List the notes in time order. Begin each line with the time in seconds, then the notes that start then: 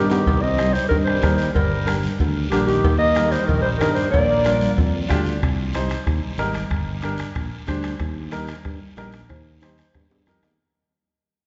Already playing: G2 D#4 G4 A#4
0.10 D#3 G4, low timbale, short guiro
0.26 C2, bombo low, cowbell, long guiro
0.42 C4 D#5
0.58 D#4 G4 C5, bombo rim, cowbell, high conga, short guiro
0.73 G3 C5, short guiro
0.89 G2 D#3 A#4, bombo low, cowbell, low conga, long guiro
1.04 G3 C5, bombo rim
1.22 D#2 D#4 G4 A#4, bombo low, bombo rim, cowbell, high conga, low conga, low timbale, short guiro
1.36 G3 C5, short guiro
1.54 G1 G3 A#4, bombo low, cowbell, long guiro
1.86 D4 G4 A#4, bombo rim, cowbell, high conga, short guiro
2.03 high conga, short guiro
2.18 D2, bombo low, cowbell, low conga, long guiro
2.51 A#1 D3 D4 G4 A#4, bombo rim, cowbell, high conga, low conga, short guiro
2.66 D#3 G4, short guiro
2.84 D#2, bombo low, cowbell, long guiro
2.98 A#3 D#5
3.15 D#4 G4 A#4, bombo rim, cowbell, high conga, short guiro
3.29 G3 C5, short guiro
3.33 high conga
3.44 D#3
3.48 A#1 A#4, bombo low, cowbell, low conga, long guiro
3.61 G3 C5
3.76 D#3 A#4
3.81 G2 D#4 G4 A#4, bombo rim, cowbell, high conga, low conga, low timbale, short guiro
3.91 G3 C5
3.96 short guiro
4.10 A#1 A#3 D5, bombo low, cowbell, low conga, long guiro
4.44 D4 F4 A#4, bombo rim, cowbell, high conga, short guiro
4.61 high conga, short guiro
4.77 F2, bombo low, cowbell, low conga, long guiro
5.08 D2 D4 F4 G4, bombo low, bombo rim, cowbell, high conga, low conga, short guiro
5.25 short guiro
5.41 C2, bombo low, bombo rim, high timbale, long guiro
5.59 high conga
5.73 D#4 G4 C5, bombo rim, high conga, high timbale, short guiro
5.89 bombo rim, high timbale, short guiro
6.05 D#2, bombo low, bombo rim, high conga, high timbale, long guiro
6.23 high conga
6.38 G#1 D#4 G4 A#4, bombo rim, high conga, high timbale, low timbale, short guiro
6.53 bombo rim, high timbale, short guiro
6.69 G1, bombo low, bombo rim, high timbale, long guiro
7.01 D4 G4 A#4, bombo rim, high conga, high timbale, short guiro
7.17 bombo rim, high timbale, short guiro
7.34 A#1, bombo low, bombo rim, high conga, high timbale, long guiro
7.67 D2 D4 G4 C5, bombo low, bombo rim, high conga, high timbale, short guiro
7.83 bombo rim, high conga, high timbale, short guiro
7.99 D#2, bombo low, bombo rim, high timbale, long guiro
8.17 high conga
8.31 D#4 G4 A#4, bombo rim, high conga, high timbale, short guiro
8.47 bombo rim, high timbale, short guiro
8.63 G2, bombo low, bombo rim, high conga, high timbale, long guiro
8.81 high conga
8.96 A#1 D#4 G4 A#4, bombo rim, high conga, high timbale, low timbale, short guiro
9.12 bombo rim, high timbale, short guiro
9.28 D#2, bombo low, bombo rim, high timbale, long guiro
9.47 high conga
9.61 D#4 G4 C5, bombo rim, high conga, high timbale, short guiro
9.78 bombo rim, short guiro
9.94 G2, bombo low, bombo rim, high conga, low timbale, long guiro
10.11 G2, low timbale
10.26 F2 D#4 G4 A#4, bombo rim, high conga, short guiro
10.43 D#2, bombo rim, high conga, low timbale, short guiro